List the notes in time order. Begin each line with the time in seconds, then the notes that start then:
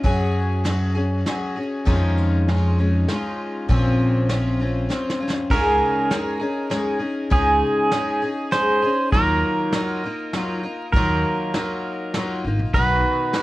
0.04 F#2 F#3 C#4 F#4 G#4, kick, ride
0.64 F#3 C#4 F#4 G#4, snare, ride
0.95 C#4 F#4 G#4
1.26 F#3 C#4 F#4 G#4, snare, ride
1.56 C#4 F#4 G#4
1.85 F2 D#3 G#3 C#4 D#4 F4, kick, ride
2.18 ride
2.48 G#3 C#4 D#4 F4, snare, ride
2.79 G#3 C#4 D#4 F4
3.08 G#3 C#4 D#4 F4, snare, ride
3.68 A#1 A#2 F3 C4 C#4 F4, kick, ride
4.29 F3 C4 C#4 F4, snare, ride
4.60 C4 C#4 F4
4.89 F3 C4 C#4 F4, snare
5.10 snare
5.20 C4 C#4 F4
5.30 snare
5.50 C#2 C#3 G#3 C#4 D#4 G#4 A#4, kick, crash
6.10 G#3 C#4 D#4 G#4, snare, closed hi-hat
6.39 C#4 D#4 G#4
6.70 G#3 C#4 D#4 G#4, snare, closed hi-hat
6.99 C#4 D#4 G#4
7.30 C#2 C#3 G#3 C#4 D#4 G#4, kick, closed hi-hat
7.91 G#3 C#4 D#4 G#4, snare, closed hi-hat
8.22 C#4 D#4 G#4
8.51 G#3 C#4 D#4 G#4 C5, snare, closed hi-hat
8.82 C#4 D#4 G#4
9.12 D#2 D#3 F#3 A#3 D#4 F4 A#4, kick, closed hi-hat
9.73 F#3 A#3 D#4 F4, snare, closed hi-hat
10.04 A#3 D#4 F4
10.33 F#3 A#3 D#4 F4, snare, closed hi-hat
10.63 A#3 D#4 F4
10.92 D#2 D#3 F#3 A#3 A#4, kick, closed hi-hat
10.97 D#4 F4
11.54 F#3 A#3 D#4 F4, snare, closed hi-hat
12.14 F#3 A#3 D#4 F4, snare, closed hi-hat
12.44 G#1 A#3 D#4 F4
12.59 A#1
12.74 B1 B2 D#3 D#4 F#4 B4, kick, closed hi-hat
13.33 D#3 D#4 F#4, snare, closed hi-hat